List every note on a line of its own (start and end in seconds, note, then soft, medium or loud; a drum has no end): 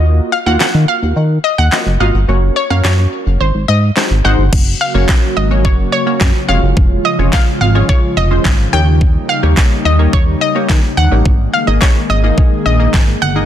0.00 0.20 D#2 medium
0.00 0.32 A#3 medium
0.00 0.32 F4 medium
0.00 0.32 F#4 medium
0.00 0.32 D#5 loud
0.32 0.39 F5 loud
0.46 0.57 D#2 loud
0.46 1.18 A#3 medium
0.46 1.18 F4 medium
0.46 1.18 F#4 medium
0.46 1.18 F5 medium
0.46 0.59 F#5 loud
0.60 0.66 D#3 soft
0.60 0.89 F#5 loud
0.60 snare medium
0.60 clap loud
0.74 0.85 D#3 loud
0.88 1.14 F5 medium
1.02 1.13 D#2 medium
1.16 1.38 D#3 loud
1.44 1.59 D#5 medium
1.58 1.69 D#2 medium
1.58 1.71 F#5 loud
1.72 1.90 A#3 medium
1.72 1.90 F4 medium
1.72 1.90 F#4 medium
1.72 1.90 D#5 medium
1.72 1.85 F#5 loud
1.72 snare medium
1.72 clap loud
1.86 1.97 F#1 medium
2.00 2.11 G#1 medium
2.00 2.18 A#3 medium
2.00 2.18 F4 medium
2.00 2.18 F#4 medium
2.00 2.18 D#5 loud
2.00 2.26 F5 medium
2.14 2.26 G1 medium
2.28 2.50 F#1 loud
2.28 2.55 A#3 medium
2.28 2.55 C#4 medium
2.28 2.55 F#4 medium
2.28 2.56 C#5 medium
2.56 2.71 C#5 medium
2.70 2.81 F#2 loud
2.70 3.40 A#3 medium
2.70 3.41 C#4 medium
2.70 3.41 F#4 medium
2.70 3.41 C#5 medium
2.70 2.85 F5 loud
2.84 3.07 F#2 loud
2.84 3.42 C#5 medium
2.84 snare medium
2.84 clap loud
3.27 3.38 F#1 medium
3.41 3.52 G#1 loud
3.41 3.93 C5 medium
3.55 3.66 G#1 medium
3.68 3.91 G#2 loud
3.68 4.21 D#5 medium
3.96 4.14 G#3 medium
3.96 4.15 D#4 medium
3.96 4.15 F#4 medium
3.96 4.15 C5 medium
3.96 snare medium
3.96 clap loud
4.11 4.22 G#1 medium
4.24 4.36 G#1 medium
4.24 4.42 G#3 loud
4.24 4.43 D#4 medium
4.24 4.43 F#4 medium
4.24 4.43 C5 loud
4.24 4.82 F#5 loud
4.38 4.50 G1 medium
4.52 4.75 F#1 loud
4.52 11.21 C#3 medium
4.52 6.47 F#3 medium
4.52 6.47 A#3 medium
4.52 6.47 F#4 medium
4.52 kick loud
4.52 crash medium
4.81 5.39 F5 medium
4.94 5.06 F#1 medium
4.94 5.31 A#3 medium
4.94 5.31 C#4 medium
4.94 5.31 F#4 medium
4.94 5.31 C#5 loud
5.09 kick loud
5.09 snare medium
5.09 clap loud
5.37 5.66 G#1 medium
5.37 5.63 D#5 medium
5.51 5.87 A#3 medium
5.51 5.87 C#4 medium
5.51 5.87 F#4 medium
5.51 5.87 C#5 medium
5.65 5.87 F#1 loud
5.65 5.91 C#5 medium
5.65 kick loud
5.92 6.50 C#5 medium
6.06 6.43 A#3 medium
6.06 6.43 C#4 medium
6.06 6.43 F#4 medium
6.06 6.43 C#5 medium
6.21 6.32 F#2 loud
6.21 kick loud
6.21 snare medium
6.21 clap loud
6.48 6.60 F1 loud
6.48 8.71 F3 medium
6.48 7.05 G#3 medium
6.48 8.71 G#3 medium
6.48 7.05 C#4 medium
6.48 7.05 F4 medium
6.48 8.71 F4 medium
6.48 7.05 C#5 medium
6.48 7.06 F5 loud
6.63 6.74 F#1 medium
6.77 6.99 F1 loud
6.77 kick loud
7.05 7.34 D#5 medium
7.19 7.30 F1 loud
7.19 7.55 G#3 medium
7.19 7.55 C#4 medium
7.19 7.55 F4 medium
7.19 7.55 C#5 medium
7.33 7.60 F5 medium
7.33 kick loud
7.33 snare medium
7.33 clap loud
7.61 7.83 G#1 loud
7.61 7.87 F5 medium
7.75 8.11 G#3 medium
7.75 8.11 C#4 medium
7.75 8.11 F4 medium
7.75 8.11 C#5 medium
7.89 8.02 C#5 medium
7.89 kick loud
8.17 8.39 F1 medium
8.17 8.69 D#5 medium
8.31 8.67 G#3 medium
8.31 8.67 C#4 medium
8.31 8.67 F4 medium
8.31 8.67 C5 medium
8.45 8.67 G#1 loud
8.45 kick loud
8.45 snare medium
8.45 clap loud
8.73 9.17 D#2 loud
8.73 11.23 G3 medium
8.73 9.29 A#3 medium
8.73 13.45 A#3 medium
8.73 9.29 D#4 medium
8.73 11.23 D#4 medium
8.73 9.29 G4 medium
8.73 9.29 C#5 medium
8.73 9.31 G5 loud
9.01 kick loud
9.29 9.81 F5 medium
9.43 9.54 D#2 loud
9.43 9.79 A#3 medium
9.43 9.79 D#4 medium
9.43 9.79 G4 medium
9.43 9.79 C#5 loud
9.57 kick loud
9.57 snare medium
9.57 clap loud
9.85 10.07 D#2 loud
9.85 10.14 D#5 medium
9.99 10.35 A#3 medium
9.99 10.35 D#4 medium
9.99 10.35 G4 medium
9.99 10.35 C#5 medium
10.13 10.35 D#2 loud
10.13 10.42 C#5 medium
10.13 kick loud
10.41 10.99 D#5 medium
10.55 10.91 A#3 medium
10.55 10.91 D#4 medium
10.55 10.91 G4 medium
10.55 10.91 C#5 medium
10.70 10.81 D#3 loud
10.70 kick loud
10.70 snare medium
10.70 clap loud
10.97 11.09 D#2 medium
10.97 11.50 F#5 loud
11.11 11.23 A1 medium
11.11 11.25 A#3 medium
11.11 11.25 D#4 medium
11.11 11.25 G4 medium
11.11 11.26 C#5 medium
11.25 11.48 G#1 loud
11.25 13.45 D#3 medium
11.25 13.45 G#3 medium
11.25 13.45 G#4 medium
11.25 kick loud
11.53 11.68 F5 medium
11.67 11.79 G#1 medium
11.67 12.03 A#3 medium
11.67 12.03 D#4 medium
11.67 12.03 G#4 medium
11.67 11.74 D#5 medium
11.67 12.03 D#5 medium
11.81 12.10 C#5 medium
11.81 kick loud
11.81 snare medium
11.81 clap loud
12.10 12.32 G#1 loud
12.10 12.62 D#5 loud
12.23 12.60 A#3 medium
12.23 12.60 D#4 medium
12.23 12.60 G#4 medium
12.23 12.60 D#5 medium
12.38 kick loud
12.66 12.88 A#1 medium
12.66 13.23 D#5 loud
12.79 13.16 A#3 medium
12.79 13.16 D#4 medium
12.79 13.16 G#4 medium
12.79 13.16 D#5 medium
12.94 13.16 G#1 loud
12.94 kick loud
12.94 snare medium
12.94 clap loud
13.22 13.44 G1 medium
13.22 13.45 F#5 loud
13.36 13.45 A#3 medium
13.36 13.45 D#4 medium
13.36 13.45 G#4 medium
13.36 13.45 D#5 medium